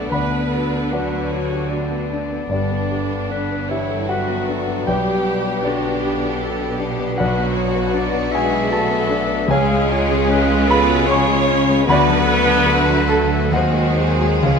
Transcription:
Already playing: B3 D4 F#4 G4 A4 D5 G5 A5
0.10 D2 D3 B3 D4 B4 D5 F#5 B5
0.32 B3
0.49 A4
0.55 F#4
0.73 B3
0.91 F#3 D4 F#4 B4 D5 F#5
1.11 B3
1.32 F#4 C#5
1.52 G4
1.70 F#4 D5
1.90 B3
2.13 D4
2.31 B3
2.49 G1 G2 D3 B3 D4 G4 B4 D5
2.71 B3
2.91 G4
3.11 B3
3.31 D4 B4
3.51 B3
3.68 E3 E4 G4 C#5 E5
3.90 A4
4.07 F#3 F#4 G4 B4 F#5
4.29 B3
4.48 D4 A4
4.68 B3
4.87 B1 B2 G3 G4 B4 D5 G5
5.09 B3
5.27 G4
5.46 B3
5.64 D3 D4 F#4 G4 B4 D5
5.85 B3
6.03 G4
6.24 A4
6.42 G4 A4
6.61 B3
6.79 D4 G4
6.99 B3
7.17 B1 F#3 B3 D4 F#4 B4 D5 F#5
7.38 B3
7.53 F#4 C#5
7.75 B3
7.93 D4 D5
8.13 B3
8.32 G#3 F#4 G#4 E5 G#5
8.51 G#4
8.70 A3 F#4 A4 A5
8.90 B3
9.09 D4
9.26 B3
9.48 C#2 C#3 G#3 C#4 F4 G#4 C#5 F5 G#5
9.71 G#3
9.91 F4 C#5
10.11 G#3
10.28 C#4 B4
10.49 G#3
10.68 B3 F4 A4 B4 B5
10.88 F#4
11.06 C#4 F4 G#4 C#5
11.11 F5 G#5 C#6
11.28 G#3
11.48 C#4
11.69 G#3
11.85 D2 D3 A3 B3 F#4 B4
11.89 D5 F#5 B5
12.08 F#3
12.26 A4 B4
12.47 F#3
12.66 A3
12.89 F#3
13.07 A3 A4 A5
13.51 D#2 D#3 F#3 G#3 C4 F#4 G#4 A#4 D#5 F#5
13.55 C5
13.73 G#3
13.96 G#4 C5
14.21 G#3
14.42 C#2 C#3 F3 C#4 F4 G#4 C#5 F5

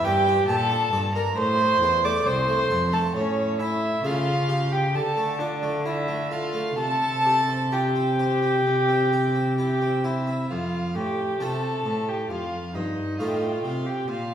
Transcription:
0.04 G2 G4 A#4 G5
0.28 D4
0.47 A#2 G4 A4 A5
0.71 D4
0.93 G2 D5
1.15 D4 A#4 A#5
1.37 A2 C5 C6
1.60 A3
1.81 E2 E4
2.05 A3 D5 D6
2.26 C2 C4 C5 C6
2.48 A3
2.70 F2 A4
2.93 A3 A4 A5
3.15 A2 C#4 C#5
3.60 E4 E5
4.04 C#3 A3 F4 F5
4.49 G4
4.73 G4 G5
4.95 D3 A4 A5
5.17 A3
5.39 D4 F4 D5
5.63 A3
5.85 E4 F4 E5
6.08 A3
6.31 F4 A4 F5
6.54 A3
6.77 C3 A4 A5
7.02 C4
7.26 G4
7.49 C4
7.72 F4 G4 G5
7.96 C4
8.19 C5
8.43 C4
8.66 C3
8.89 C4
9.13 G4
9.35 C4
9.57 E4 G4 G5
9.82 C4
10.04 E4 C5 E5
10.27 C4
10.50 F2 F4 F5
10.95 A2 G4 G5
11.40 C3 A3 C4 F4 A4 A5
11.86 A2
12.08 G4 G5
12.30 F2 F4 F5
12.75 G2 D#4 D#5
13.19 A2 A3 D#4 F4 F5
13.28 G5
13.35 F5
13.43 G5
13.52 F5
13.59 G5
13.64 C3
13.68 F5
13.86 G4 G5
14.08 A#2 F4 F5

